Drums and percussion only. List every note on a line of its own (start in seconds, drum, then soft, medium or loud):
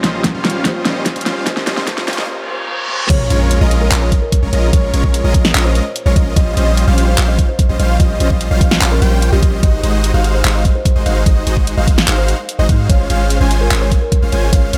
0.04 snare medium
0.04 closed hi-hat medium
0.24 kick loud
0.24 snare medium
0.24 closed hi-hat medium
0.45 snare medium
0.45 closed hi-hat soft
0.50 closed hi-hat medium
0.65 kick loud
0.65 snare medium
0.65 closed hi-hat medium
0.85 snare medium
0.85 closed hi-hat medium
1.06 kick loud
1.06 snare medium
1.06 closed hi-hat medium
1.16 closed hi-hat soft
1.21 closed hi-hat medium
1.26 snare medium
1.26 closed hi-hat medium
1.47 kick loud
1.47 snare medium
1.47 closed hi-hat medium
1.57 snare medium
1.67 snare loud
1.67 closed hi-hat medium
1.77 snare medium
1.87 kick loud
1.87 snare loud
1.87 closed hi-hat medium
1.98 snare medium
2.08 snare loud
2.08 closed hi-hat soft
2.13 closed hi-hat medium
2.18 snare medium
3.10 kick loud
3.10 closed hi-hat medium
3.10 crash loud
3.30 closed hi-hat medium
3.51 closed hi-hat medium
3.71 closed hi-hat medium
3.92 clap loud
3.92 closed hi-hat medium
4.12 kick loud
4.12 closed hi-hat medium
4.32 kick loud
4.32 closed hi-hat medium
4.53 closed hi-hat medium
4.73 kick loud
4.73 closed hi-hat medium
4.94 closed hi-hat medium
5.04 kick medium
5.14 closed hi-hat medium
5.34 kick loud
5.34 closed hi-hat medium
5.45 snare medium
5.55 clap loud
5.55 closed hi-hat medium
5.75 closed hi-hat medium
5.96 closed hi-hat medium
6.16 kick loud
6.16 closed hi-hat medium
6.36 kick loud
6.36 closed hi-hat medium
6.57 closed hi-hat medium
6.77 closed hi-hat medium
6.98 closed hi-hat medium
7.18 clap loud
7.18 closed hi-hat medium
7.38 kick loud
7.38 closed hi-hat medium
7.59 kick loud
7.59 closed hi-hat medium
7.80 closed hi-hat medium
8.00 kick loud
8.00 closed hi-hat medium
8.20 closed hi-hat medium
8.30 kick medium
8.41 closed hi-hat medium
8.61 kick loud
8.61 closed hi-hat medium
8.71 snare medium
8.82 clap loud
8.82 closed hi-hat medium
9.02 closed hi-hat medium
9.22 closed hi-hat medium
9.43 kick loud
9.43 closed hi-hat medium
9.63 kick loud
9.63 closed hi-hat medium
9.84 closed hi-hat medium
10.04 closed hi-hat medium
10.24 closed hi-hat medium
10.45 clap loud
10.45 closed hi-hat medium
10.65 kick loud
10.65 closed hi-hat medium
10.85 kick loud
10.85 closed hi-hat medium
11.06 closed hi-hat medium
11.26 kick loud
11.26 closed hi-hat medium
11.47 closed hi-hat medium
11.57 kick medium
11.67 closed hi-hat medium
11.87 kick loud
11.87 closed hi-hat medium
11.98 snare medium
12.08 clap loud
12.08 closed hi-hat medium
12.28 closed hi-hat medium
12.49 closed hi-hat medium
12.69 kick loud
12.69 closed hi-hat medium
12.90 kick loud
12.90 closed hi-hat medium
13.10 closed hi-hat medium
13.30 closed hi-hat medium
13.51 closed hi-hat medium
13.71 clap loud
13.71 closed hi-hat medium
13.92 kick loud
13.92 closed hi-hat medium
14.12 kick loud
14.12 closed hi-hat medium
14.32 closed hi-hat medium
14.53 kick loud
14.53 closed hi-hat medium
14.73 closed hi-hat medium